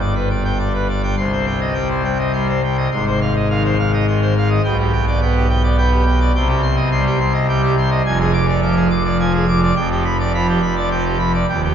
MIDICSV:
0, 0, Header, 1, 2, 480
1, 0, Start_track
1, 0, Key_signature, -3, "minor"
1, 0, Tempo, 579710
1, 982, Time_signature, 3, 2, 24, 8
1, 3372, Tempo, 570342
1, 9830, End_track
2, 0, Start_track
2, 0, Title_t, "Pipe organ"
2, 0, Program_c, 0, 19
2, 0, Note_on_c, 0, 31, 81
2, 0, Note_on_c, 0, 43, 81
2, 5, Note_on_c, 0, 74, 69
2, 117, Note_off_c, 0, 74, 0
2, 125, Note_on_c, 0, 71, 62
2, 237, Note_off_c, 0, 71, 0
2, 247, Note_on_c, 0, 74, 68
2, 359, Note_off_c, 0, 74, 0
2, 369, Note_on_c, 0, 79, 68
2, 480, Note_off_c, 0, 79, 0
2, 488, Note_on_c, 0, 74, 81
2, 600, Note_off_c, 0, 74, 0
2, 613, Note_on_c, 0, 71, 57
2, 723, Note_off_c, 0, 71, 0
2, 733, Note_on_c, 0, 74, 61
2, 844, Note_off_c, 0, 74, 0
2, 849, Note_on_c, 0, 79, 73
2, 948, Note_off_c, 0, 31, 0
2, 948, Note_off_c, 0, 43, 0
2, 957, Note_off_c, 0, 79, 0
2, 969, Note_on_c, 0, 84, 95
2, 970, Note_on_c, 0, 36, 77
2, 971, Note_on_c, 0, 48, 81
2, 1082, Note_off_c, 0, 84, 0
2, 1093, Note_on_c, 0, 72, 67
2, 1204, Note_off_c, 0, 72, 0
2, 1207, Note_on_c, 0, 79, 73
2, 1321, Note_off_c, 0, 79, 0
2, 1329, Note_on_c, 0, 75, 71
2, 1441, Note_on_c, 0, 79, 76
2, 1442, Note_off_c, 0, 75, 0
2, 1443, Note_on_c, 0, 55, 63
2, 1557, Note_off_c, 0, 79, 0
2, 1570, Note_on_c, 0, 72, 67
2, 1665, Note_off_c, 0, 55, 0
2, 1682, Note_off_c, 0, 72, 0
2, 1690, Note_on_c, 0, 79, 73
2, 1802, Note_off_c, 0, 79, 0
2, 1808, Note_on_c, 0, 75, 70
2, 1921, Note_off_c, 0, 75, 0
2, 1931, Note_on_c, 0, 84, 82
2, 1932, Note_on_c, 0, 55, 66
2, 2043, Note_off_c, 0, 84, 0
2, 2055, Note_on_c, 0, 72, 60
2, 2150, Note_off_c, 0, 55, 0
2, 2165, Note_off_c, 0, 72, 0
2, 2179, Note_on_c, 0, 79, 65
2, 2286, Note_off_c, 0, 79, 0
2, 2297, Note_on_c, 0, 75, 66
2, 2380, Note_off_c, 0, 36, 0
2, 2381, Note_off_c, 0, 48, 0
2, 2399, Note_off_c, 0, 75, 0
2, 2409, Note_on_c, 0, 32, 89
2, 2410, Note_on_c, 0, 44, 83
2, 2414, Note_on_c, 0, 84, 103
2, 2522, Note_off_c, 0, 84, 0
2, 2536, Note_on_c, 0, 72, 64
2, 2643, Note_off_c, 0, 72, 0
2, 2658, Note_on_c, 0, 77, 74
2, 2764, Note_off_c, 0, 77, 0
2, 2780, Note_on_c, 0, 75, 72
2, 2885, Note_off_c, 0, 75, 0
2, 2894, Note_on_c, 0, 51, 67
2, 2897, Note_on_c, 0, 77, 73
2, 3003, Note_off_c, 0, 77, 0
2, 3018, Note_on_c, 0, 72, 75
2, 3107, Note_off_c, 0, 51, 0
2, 3123, Note_off_c, 0, 72, 0
2, 3136, Note_on_c, 0, 77, 79
2, 3241, Note_off_c, 0, 77, 0
2, 3259, Note_on_c, 0, 75, 77
2, 3362, Note_off_c, 0, 75, 0
2, 3372, Note_on_c, 0, 51, 72
2, 3375, Note_on_c, 0, 84, 85
2, 3480, Note_off_c, 0, 84, 0
2, 3492, Note_on_c, 0, 72, 61
2, 3585, Note_off_c, 0, 51, 0
2, 3598, Note_off_c, 0, 72, 0
2, 3622, Note_on_c, 0, 77, 75
2, 3724, Note_off_c, 0, 77, 0
2, 3731, Note_on_c, 0, 75, 79
2, 3810, Note_off_c, 0, 32, 0
2, 3811, Note_off_c, 0, 44, 0
2, 3832, Note_off_c, 0, 75, 0
2, 3849, Note_on_c, 0, 35, 83
2, 3851, Note_on_c, 0, 47, 82
2, 3851, Note_on_c, 0, 79, 110
2, 3957, Note_off_c, 0, 79, 0
2, 3979, Note_on_c, 0, 67, 71
2, 4082, Note_off_c, 0, 67, 0
2, 4087, Note_on_c, 0, 79, 79
2, 4195, Note_off_c, 0, 79, 0
2, 4216, Note_on_c, 0, 74, 80
2, 4321, Note_off_c, 0, 74, 0
2, 4334, Note_on_c, 0, 59, 73
2, 4335, Note_on_c, 0, 79, 81
2, 4441, Note_off_c, 0, 79, 0
2, 4453, Note_on_c, 0, 67, 82
2, 4548, Note_off_c, 0, 59, 0
2, 4559, Note_off_c, 0, 67, 0
2, 4566, Note_on_c, 0, 79, 88
2, 4676, Note_off_c, 0, 79, 0
2, 4689, Note_on_c, 0, 74, 86
2, 4797, Note_off_c, 0, 74, 0
2, 4805, Note_on_c, 0, 79, 86
2, 4811, Note_on_c, 0, 59, 80
2, 4915, Note_off_c, 0, 79, 0
2, 4924, Note_on_c, 0, 67, 80
2, 5025, Note_off_c, 0, 59, 0
2, 5034, Note_off_c, 0, 67, 0
2, 5045, Note_on_c, 0, 79, 79
2, 5154, Note_off_c, 0, 79, 0
2, 5165, Note_on_c, 0, 74, 83
2, 5255, Note_off_c, 0, 35, 0
2, 5257, Note_off_c, 0, 47, 0
2, 5269, Note_off_c, 0, 74, 0
2, 5287, Note_on_c, 0, 36, 98
2, 5288, Note_on_c, 0, 48, 96
2, 5288, Note_on_c, 0, 79, 88
2, 5395, Note_off_c, 0, 79, 0
2, 5400, Note_on_c, 0, 67, 85
2, 5510, Note_off_c, 0, 67, 0
2, 5519, Note_on_c, 0, 84, 112
2, 5629, Note_off_c, 0, 84, 0
2, 5635, Note_on_c, 0, 75, 81
2, 5747, Note_off_c, 0, 75, 0
2, 5760, Note_on_c, 0, 55, 80
2, 5761, Note_on_c, 0, 84, 84
2, 5871, Note_off_c, 0, 84, 0
2, 5886, Note_on_c, 0, 67, 88
2, 5977, Note_off_c, 0, 55, 0
2, 5993, Note_off_c, 0, 67, 0
2, 6005, Note_on_c, 0, 84, 87
2, 6112, Note_off_c, 0, 84, 0
2, 6118, Note_on_c, 0, 75, 87
2, 6228, Note_off_c, 0, 75, 0
2, 6244, Note_on_c, 0, 79, 100
2, 6246, Note_on_c, 0, 55, 86
2, 6351, Note_off_c, 0, 79, 0
2, 6364, Note_on_c, 0, 67, 78
2, 6458, Note_off_c, 0, 55, 0
2, 6470, Note_off_c, 0, 67, 0
2, 6485, Note_on_c, 0, 84, 85
2, 6591, Note_off_c, 0, 84, 0
2, 6598, Note_on_c, 0, 75, 98
2, 6687, Note_off_c, 0, 36, 0
2, 6687, Note_off_c, 0, 48, 0
2, 6701, Note_off_c, 0, 75, 0
2, 6722, Note_on_c, 0, 41, 108
2, 6723, Note_on_c, 0, 29, 103
2, 6723, Note_on_c, 0, 80, 99
2, 6829, Note_off_c, 0, 80, 0
2, 6843, Note_on_c, 0, 68, 82
2, 6948, Note_off_c, 0, 68, 0
2, 6957, Note_on_c, 0, 86, 124
2, 7064, Note_off_c, 0, 86, 0
2, 7078, Note_on_c, 0, 74, 81
2, 7185, Note_off_c, 0, 74, 0
2, 7202, Note_on_c, 0, 86, 90
2, 7204, Note_on_c, 0, 53, 83
2, 7307, Note_off_c, 0, 86, 0
2, 7318, Note_on_c, 0, 68, 88
2, 7416, Note_off_c, 0, 53, 0
2, 7425, Note_off_c, 0, 68, 0
2, 7439, Note_on_c, 0, 86, 88
2, 7545, Note_off_c, 0, 86, 0
2, 7558, Note_on_c, 0, 74, 86
2, 7665, Note_off_c, 0, 74, 0
2, 7682, Note_on_c, 0, 53, 85
2, 7684, Note_on_c, 0, 80, 98
2, 7789, Note_off_c, 0, 80, 0
2, 7801, Note_on_c, 0, 68, 83
2, 7895, Note_off_c, 0, 53, 0
2, 7907, Note_off_c, 0, 68, 0
2, 7923, Note_on_c, 0, 86, 79
2, 8029, Note_off_c, 0, 86, 0
2, 8046, Note_on_c, 0, 74, 96
2, 8126, Note_off_c, 0, 41, 0
2, 8127, Note_off_c, 0, 29, 0
2, 8145, Note_off_c, 0, 74, 0
2, 8156, Note_on_c, 0, 79, 92
2, 8158, Note_on_c, 0, 41, 100
2, 8160, Note_on_c, 0, 29, 108
2, 8265, Note_off_c, 0, 79, 0
2, 8282, Note_on_c, 0, 67, 80
2, 8389, Note_off_c, 0, 67, 0
2, 8400, Note_on_c, 0, 83, 105
2, 8508, Note_off_c, 0, 83, 0
2, 8526, Note_on_c, 0, 74, 80
2, 8632, Note_off_c, 0, 74, 0
2, 8648, Note_on_c, 0, 53, 82
2, 8649, Note_on_c, 0, 83, 94
2, 8755, Note_off_c, 0, 83, 0
2, 8767, Note_on_c, 0, 67, 91
2, 8862, Note_off_c, 0, 53, 0
2, 8874, Note_off_c, 0, 67, 0
2, 8883, Note_on_c, 0, 83, 80
2, 8992, Note_off_c, 0, 83, 0
2, 9003, Note_on_c, 0, 74, 80
2, 9112, Note_off_c, 0, 74, 0
2, 9121, Note_on_c, 0, 53, 87
2, 9126, Note_on_c, 0, 79, 102
2, 9234, Note_off_c, 0, 79, 0
2, 9241, Note_on_c, 0, 67, 72
2, 9339, Note_off_c, 0, 53, 0
2, 9352, Note_off_c, 0, 67, 0
2, 9362, Note_on_c, 0, 83, 81
2, 9473, Note_off_c, 0, 83, 0
2, 9491, Note_on_c, 0, 74, 90
2, 9576, Note_off_c, 0, 29, 0
2, 9576, Note_off_c, 0, 41, 0
2, 9593, Note_off_c, 0, 74, 0
2, 9611, Note_on_c, 0, 27, 89
2, 9611, Note_on_c, 0, 39, 86
2, 9612, Note_on_c, 0, 79, 83
2, 9719, Note_off_c, 0, 79, 0
2, 9738, Note_on_c, 0, 67, 72
2, 9830, Note_off_c, 0, 27, 0
2, 9830, Note_off_c, 0, 39, 0
2, 9830, Note_off_c, 0, 67, 0
2, 9830, End_track
0, 0, End_of_file